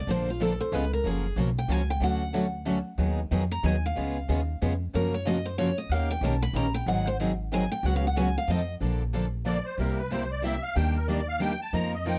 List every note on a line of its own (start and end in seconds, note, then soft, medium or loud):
0.07 0.59 A#1 medium
0.07 0.28 D3 medium
0.07 0.29 F3 medium
0.07 0.29 A#3 medium
0.07 0.29 D4 medium
0.07 0.29 A4 medium
0.07 0.28 C5 medium
0.30 0.41 F4 medium
0.40 0.51 D3 medium
0.40 0.51 F3 loud
0.40 0.52 A#3 loud
0.40 0.52 D4 loud
0.40 0.52 A4 loud
0.40 0.60 A4 medium
0.61 0.74 C5 loud
0.72 0.98 C#2 medium
0.72 0.83 C#3 medium
0.72 0.84 G#3 medium
0.72 0.84 B3 loud
0.72 0.84 F4 loud
0.72 0.84 G#4 medium
0.72 0.93 B4 loud
0.93 1.07 A#4 medium
1.04 1.30 F#1 medium
1.04 1.25 C#3 medium
1.04 1.25 F3 medium
1.04 1.25 F#3 medium
1.04 1.25 A#3 medium
1.04 1.26 C#4 medium
1.04 1.26 F4 medium
1.04 1.26 F#4 medium
1.04 1.38 G#4 medium
1.04 1.25 A#4 medium
1.36 1.64 B1 medium
1.36 1.48 C#3 medium
1.36 1.48 F3 medium
1.36 1.48 F#3 medium
1.36 1.49 A#3 medium
1.36 1.49 C#4 loud
1.36 1.48 F4 medium
1.36 1.49 F#4 medium
1.36 1.49 A#4 loud
1.58 1.72 G5 medium
1.68 1.96 C#2 medium
1.68 1.80 C#3 medium
1.68 1.81 F3 loud
1.68 1.80 F#3 loud
1.68 1.81 A#3 medium
1.68 1.81 C#4 loud
1.68 1.81 F4 loud
1.68 1.81 F#4 loud
1.68 1.81 A#4 loud
1.68 1.90 G#5 loud
1.90 2.02 G5 medium
2.00 2.79 D2 medium
2.00 2.22 D3 medium
2.00 2.22 F#3 medium
2.00 2.22 A3 medium
2.00 2.22 C#4 medium
2.00 2.23 F#4 medium
2.00 2.22 A4 medium
2.00 2.96 F#5 medium
2.33 2.45 D3 medium
2.33 2.45 F#3 loud
2.33 2.45 A3 loud
2.33 2.45 C#4 medium
2.33 2.45 F#4 loud
2.33 2.46 A4 medium
2.65 2.77 D3 medium
2.65 2.77 F#3 loud
2.65 2.77 A3 medium
2.65 2.77 C#4 loud
2.65 2.77 F#4 loud
2.65 2.78 A4 loud
2.98 3.24 D#2 loud
2.98 3.19 D#3 medium
2.98 3.19 F#3 medium
2.98 3.19 B3 medium
2.98 3.19 D#4 medium
2.98 3.19 G#4 medium
3.31 3.59 F2 medium
3.31 3.42 D#3 medium
3.31 3.42 F#3 loud
3.31 3.42 B3 loud
3.31 3.43 D#4 loud
3.31 3.43 G#4 loud
3.52 3.66 A#5 loud
3.63 3.91 D#2 medium
3.63 3.74 D#3 medium
3.63 3.75 F#3 medium
3.63 3.75 B3 medium
3.63 3.75 D#4 medium
3.63 3.75 G#4 medium
3.63 3.84 G#5 loud
3.86 4.58 F5 medium
3.96 4.23 C#2 medium
3.96 4.16 C#3 medium
3.96 4.17 G#3 medium
3.96 4.17 B3 medium
3.96 4.17 F4 medium
3.96 4.17 G#4 medium
4.29 4.56 D#2 medium
4.29 4.39 C#3 medium
4.29 4.40 G#3 loud
4.29 4.40 B3 medium
4.29 4.40 F4 loud
4.29 4.40 G#4 loud
4.62 4.89 F2 medium
4.62 4.72 C#3 medium
4.62 4.72 G#3 medium
4.62 4.72 B3 medium
4.62 4.73 F4 medium
4.62 4.72 G#4 loud
4.93 5.72 F#2 medium
4.93 5.13 C#3 medium
4.93 5.14 F3 medium
4.93 5.14 F#3 medium
4.93 5.14 A#3 medium
4.93 5.14 C#4 medium
4.93 5.14 F4 medium
4.93 5.14 F#4 medium
4.93 5.13 A#4 medium
4.93 5.15 A#4 medium
5.14 5.26 C#5 medium
5.25 5.37 C#3 loud
5.25 5.37 F3 loud
5.25 5.36 F#3 medium
5.25 5.37 A#3 loud
5.25 5.37 C#4 loud
5.25 5.37 F4 loud
5.25 5.38 F#4 loud
5.25 5.37 A#4 medium
5.25 5.45 D#5 loud
5.45 5.58 C5 medium
5.58 5.70 C#3 medium
5.58 5.69 F3 loud
5.58 5.69 F#3 loud
5.58 5.70 A#3 loud
5.58 5.70 C#4 loud
5.58 5.69 F4 loud
5.58 5.70 F#4 loud
5.58 5.69 A#4 loud
5.58 5.77 C#5 loud
5.78 5.92 D#5 medium
5.89 6.16 D#2 medium
5.89 6.11 D#3 medium
5.89 6.11 A#3 medium
5.89 6.11 C#4 medium
5.89 6.11 G4 medium
5.89 6.12 A#4 medium
5.89 6.10 F5 medium
6.11 6.23 G5 loud
6.21 6.49 B1 medium
6.21 6.34 D#3 loud
6.21 6.34 A#3 medium
6.21 6.34 C#4 medium
6.21 6.34 G4 loud
6.21 6.34 A#4 loud
6.21 6.42 A5 loud
6.42 6.55 B5 loud
6.53 6.81 A#1 medium
6.53 6.66 D#3 medium
6.53 6.66 A#3 medium
6.53 6.66 C#4 loud
6.53 6.66 G4 medium
6.53 6.66 A#4 loud
6.53 6.74 A#5 medium
6.74 6.87 G5 loud
6.86 7.64 G#1 loud
6.86 7.07 D#3 medium
6.86 7.07 F#3 medium
6.86 7.08 C4 medium
6.86 7.08 D#4 medium
6.86 7.08 G#4 medium
6.86 7.07 F#5 loud
7.07 7.15 C5 loud
7.20 7.31 D#3 loud
7.20 7.31 F#3 medium
7.20 7.31 C4 loud
7.20 7.31 D#4 loud
7.20 7.31 G#4 loud
7.52 7.63 D#3 loud
7.52 7.63 F#3 loud
7.52 7.63 C4 loud
7.52 7.64 D#4 medium
7.52 7.64 G#4 loud
7.52 7.71 G#5 loud
7.72 7.86 G5 loud
7.83 8.35 C#2 loud
7.83 8.05 C#3 medium
7.83 8.05 F#3 medium
7.83 8.05 B3 medium
7.83 8.05 C#4 medium
7.83 8.05 F#4 medium
7.83 8.05 G#4 medium
7.83 7.95 F#5 medium
7.96 8.06 F5 medium
8.07 8.17 F#5 medium
8.16 8.27 C#3 loud
8.16 8.28 F#3 loud
8.16 8.28 B3 loud
8.16 8.28 C#4 loud
8.16 8.28 F#4 loud
8.16 8.28 G#4 loud
8.16 8.36 G#5 loud
8.38 8.49 F5 medium
8.48 8.74 F2 medium
8.48 8.60 F3 medium
8.48 8.61 C4 loud
8.48 8.61 D#4 loud
8.48 8.61 A4 loud
8.48 8.74 D#5 medium
8.81 9.59 A#1 medium
8.81 9.02 D3 medium
8.81 9.02 F3 medium
8.81 9.02 A#3 medium
8.81 9.02 D4 medium
8.81 9.02 A4 medium
9.13 9.24 D3 medium
9.13 9.25 F3 medium
9.13 9.25 A#3 medium
9.13 9.25 D4 medium
9.13 9.25 A4 loud
9.46 9.57 D3 medium
9.46 9.57 F3 medium
9.46 9.57 A#3 medium
9.46 9.57 D4 medium
9.46 9.57 A4 medium
9.46 9.65 D5 medium
9.65 9.78 C5 medium
9.78 10.56 C2 medium
9.78 9.99 C3 medium
9.78 9.99 G3 medium
9.78 9.99 A#3 medium
9.78 9.99 E4 medium
9.78 10.00 G4 medium
9.78 9.98 A#4 medium
9.98 10.11 B4 medium
10.11 10.22 C3 medium
10.11 10.22 G3 loud
10.11 10.22 A#3 medium
10.11 10.23 E4 loud
10.11 10.23 G4 loud
10.11 10.31 C5 medium
10.31 10.43 D5 medium
10.42 10.54 C3 medium
10.42 10.54 G3 medium
10.42 10.54 A#3 medium
10.42 10.54 E4 loud
10.42 10.55 G4 loud
10.42 10.63 E5 medium
10.63 10.76 F5 loud
10.76 11.54 D#2 medium
10.76 10.96 D#3 medium
10.76 10.97 G3 medium
10.76 10.96 A#3 medium
10.76 10.97 D4 medium
10.76 10.97 G4 medium
10.76 10.95 G5 medium
10.96 11.08 A#4 medium
11.08 11.20 D#3 medium
11.08 11.20 G3 medium
11.08 11.20 A#3 loud
11.08 11.20 D4 loud
11.08 11.20 G4 loud
11.08 11.27 D5 medium
11.29 11.41 F5 loud
11.39 11.51 D#3 medium
11.39 11.51 G3 loud
11.39 11.52 A#3 medium
11.39 11.52 D4 loud
11.39 11.52 G4 medium
11.39 11.60 G5 loud
11.62 11.74 A5 medium
11.73 12.19 F2 medium
11.73 11.94 F3 medium
11.73 11.94 A#3 medium
11.73 11.94 D#4 medium
11.73 11.94 F4 medium
11.73 11.94 A#4 medium
11.73 11.93 A#5 loud
11.94 12.06 D#5 medium
12.05 12.16 F3 medium
12.05 12.17 A#3 medium
12.05 12.17 D#4 loud
12.05 12.17 F4 medium
12.05 12.17 A#4 loud
12.05 12.19 G5 medium